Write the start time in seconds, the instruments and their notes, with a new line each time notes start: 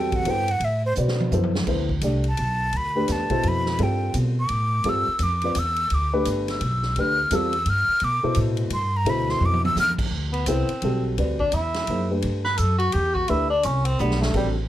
Already playing: upright bass E2, grand piano G3 C4 F#4 A4, flute G5
0.12 flute F#5, kick, ride
0.25 upright bass G2, grand piano B3 E4 A4 C5, ride
0.30 flute G5
0.48 flute F#5, ride
0.60 upright bass A2, ride
0.65 flute E5
0.86 flute C5
0.95 upright bass B2, grand piano F#4 B4 C5 D5, hi-hat pedal
1.08 snare
1.20 high tom
1.32 upright bass F#2, grand piano B3 E4 A4 C5, hi-hat pedal, high tom
1.43 floor tom
1.55 snare
1.67 upright bass D2, grand piano B3 E4 A4 C5, kick, crash
1.89 kick
2.01 upright bass C2, grand piano A3 D4 G4 D5, hi-hat pedal, ride
2.24 ride
2.29 flute A5
2.37 upright bass B1, ride
2.73 upright bass D2, ride
2.77 flute B5
2.95 grand piano A3 D4 G4 B4
3.08 upright bass E2, snare, hi-hat pedal, ride
3.12 flute A5
3.30 grand piano B2 E4 A4 C5, muted upright bass stroke, kick, ride
3.43 upright bass F2, ride
3.48 flute B5
3.66 snare
3.79 upright bass G2, grand piano G3 C4 F4 A4, ride
3.83 flute G5
4.14 upright bass B2, hi-hat pedal, ride
4.40 flute D6
4.49 upright bass A2, ride
4.84 upright bass G2, grand piano G3 C4 F4 A4, ride
4.89 flute E6
5.08 muted upright bass stroke
5.19 upright bass F2, hi-hat pedal, ride
5.23 flute D6
5.42 grand piano C4 F4 B4 D5, ride
5.55 upright bass E2, hi-hat pedal, ride
5.59 flute E6
5.76 ride
5.90 upright bass D2, ride
5.94 flute D6
6.13 grand piano A3 D4 G4 B4
6.25 upright bass G1, hi-hat pedal, ride
6.48 flute E6, snare, ride
6.61 upright bass B1, ride
6.83 snare
6.96 upright bass D2, grand piano A3 D4 G4 B4, ride
7.00 flute F6
7.31 upright bass E2, grand piano G3 C4 F4 A4, hi-hat pedal, ride
7.35 flute E6
7.53 ride
7.66 upright bass G2, flute F6, ride
7.88 muted upright bass stroke
8.00 upright bass B2, ride
8.04 flute D6
8.23 grand piano B2 E4 A4 C5, muted upright bass stroke
8.35 upright bass A2, hi-hat pedal, ride
8.57 ride
8.70 upright bass G2, flute C6, ride
8.97 flute A#5
9.05 upright bass D2, grand piano B2 E4 A4 C5, ride
9.10 flute B5
9.29 flute C6, snare
9.40 upright bass F2, high tom
9.46 flute D6
9.54 high tom
9.65 flute E6, high tom
9.75 upright bass E2, snare, hi-hat pedal
9.80 flute F6
9.98 muted upright bass stroke, kick, crash
10.11 upright bass D2
10.32 tenor saxophone B3, ride
10.46 upright bass C2, grand piano B3 E4 A4 C5, tenor saxophone C4, hi-hat pedal, ride
10.69 muted upright bass stroke, ride
10.82 upright bass B1, grand piano G3 C4 F#4 A4, ride
11.18 upright bass D2, grand piano C4 F#4 B4 D5, ride
11.39 tenor saxophone D4, kick
11.52 upright bass E2, tenor saxophone E4, hi-hat pedal, ride
11.74 snare, ride
11.87 upright bass F#2, grand piano A#3 D#4 G#4 C5, ride
12.10 grand piano A3 D4 G4 B4
12.22 upright bass G2, ride
12.44 tenor saxophone B4, snare
12.57 upright bass F#2, tenor saxophone A4, hi-hat pedal, ride
12.78 tenor saxophone F#4, ride
12.92 upright bass E2, tenor saxophone G4, ride
13.14 tenor saxophone F#4, kick
13.28 upright bass D2, grand piano A3 D4 G4 B4, tenor saxophone E4, ride
13.50 tenor saxophone D4
13.63 upright bass C2, tenor saxophone C#4, hi-hat pedal, ride
13.85 tenor saxophone C4, ride
13.99 upright bass B1, grand piano A3 D4 G4 D5, tenor saxophone B3, hi-hat pedal
14.11 snare
14.21 tenor saxophone A3, snare
14.34 upright bass A1, grand piano G3 C4 F#4 A4, tenor saxophone G3, kick, crash